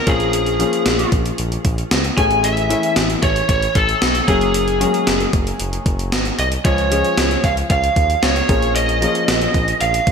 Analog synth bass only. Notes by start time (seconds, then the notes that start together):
0.07 A#1
0.86 A#1
1.12 A#1
1.39 A#1
1.65 A#1
1.91 C#2
2.18 A1
2.97 A1
3.23 A1
3.49 A1
3.75 A1
4.02 B1
4.28 F#1
5.07 F#1
5.33 F#1
5.60 F#1
5.86 F#1
6.12 G#1
6.39 C2
6.65 C#2
7.18 C#2
7.44 C#2
7.70 C#2
7.96 D#2
8.23 C#2
8.49 A#1
9.28 A#1
9.54 A#1
9.81 A#1
10.07 A#1